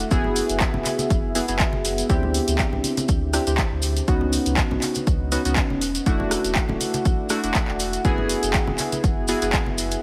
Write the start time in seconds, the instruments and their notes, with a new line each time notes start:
Already playing: ambient pad D4 A4 E5 F#5
0.11 sub bass F#1, synth keys B3 E4 F#4 G#4, ambient pad B3, kick, closed hi-hat, cabasa
0.24 low conga
0.36 open hi-hat, cabasa
0.49 sub bass F#1, closed hi-hat, cabasa
0.60 kick, clap, closed hi-hat, cabasa
0.66 ambient pad G#4
0.74 sub bass E1, high conga, low conga
0.85 clap, open hi-hat, high conga, cabasa
0.99 closed hi-hat, high conga, cabasa
1.10 sub bass F#1, kick, closed hi-hat, cabasa
1.35 synth keys B3 E4 F#4 G#4, open hi-hat, cabasa
1.48 sub bass F#1, synth keys B3 E4 F#4 G#4, closed hi-hat, cabasa
1.59 kick, clap, closed hi-hat, cabasa
1.73 sub bass F#1, high conga
1.85 open hi-hat, cabasa
1.98 closed hi-hat, cabasa
2.09 sub bass D2, synth keys C4 D4 E4 G4, ambient pad D4, kick, closed hi-hat, cabasa
2.23 low conga
2.34 open hi-hat, cabasa
2.48 sub bass D2, closed hi-hat, cabasa
2.59 ambient pad C5, kick, clap, closed hi-hat, cabasa
2.73 sub bass C2, low conga
2.84 open hi-hat, high conga, cabasa
2.97 ambient pad G5, closed hi-hat, high conga, cabasa
3.08 sub bass D2, kick, closed hi-hat, cabasa
3.33 synth keys C4 D4 E4 G4, cross-stick, open hi-hat, cabasa
3.47 sub bass D2, synth keys C4 D4 E4 G4, closed hi-hat, cabasa
3.58 kick, clap, closed hi-hat, cabasa
3.72 sub bass D2
3.82 open hi-hat, cabasa
3.97 closed hi-hat, cabasa
4.08 sub bass C#2, synth keys B3 C#4 D#4 F#4, ambient pad C#4, kick, closed hi-hat, cabasa
4.21 low conga
4.33 open hi-hat, cabasa
4.46 sub bass C#2, closed hi-hat, cabasa
4.54 ambient pad B4, kick, clap, closed hi-hat, cabasa
4.71 sub bass B1, high conga, low conga
4.82 clap, open hi-hat, high conga, cabasa
4.86 ambient pad D#5 F#5
4.95 closed hi-hat, high conga, cabasa
5.07 sub bass C#2, kick, closed hi-hat, cabasa
5.32 synth keys B3 C#4 D#4 F#4, open hi-hat, cabasa
5.45 sub bass C#2, synth keys B3 C#4 D#4 F#4, closed hi-hat, cabasa
5.56 kick, clap, closed hi-hat, cabasa
5.70 sub bass E1, high conga
5.81 ambient pad D4, open hi-hat, cabasa
5.95 closed hi-hat, cabasa
6.03 sub bass E1, synth keys A3 D4 E4 F#4, ambient pad A4, kick, closed hi-hat, cabasa
6.20 low conga
6.31 cross-stick, open hi-hat, cabasa
6.44 sub bass E1, closed hi-hat, cabasa
6.50 ambient pad E5
6.55 kick, clap, closed hi-hat, cabasa
6.69 sub bass D1, high conga, low conga
6.81 open hi-hat, high conga, cabasa
6.94 closed hi-hat, high conga, cabasa
7.05 sub bass B1, kick, closed hi-hat, cabasa
7.29 synth keys A3 D4 E4 F#4, cross-stick, open hi-hat, cabasa
7.43 sub bass E1, synth keys A3 D4 E4 F#4, closed hi-hat, cabasa
7.54 kick, clap, closed hi-hat, cabasa
7.68 sub bass E1, clap
7.80 open hi-hat, cabasa
7.93 closed hi-hat, cabasa
8.04 sub bass F#1, synth keys B3 E4 F#4 G#4, ambient pad B3, kick, closed hi-hat, cabasa
8.18 low conga
8.29 ambient pad G#4, open hi-hat, cabasa
8.43 sub bass F#1, closed hi-hat, cabasa
8.54 kick, clap, closed hi-hat, cabasa
8.67 sub bass E1, high conga, low conga
8.78 clap, open hi-hat, high conga, cabasa
8.92 closed hi-hat, high conga, cabasa
9.04 sub bass F#1, kick, closed hi-hat, cabasa
9.28 synth keys B3 E4 F#4 G#4, open hi-hat, cabasa
9.42 sub bass F#1, synth keys B3 E4 F#4 G#4, closed hi-hat, cabasa
9.53 kick, clap, closed hi-hat, cabasa
9.66 sub bass F#1, high conga
9.78 open hi-hat, cabasa
9.91 closed hi-hat, cabasa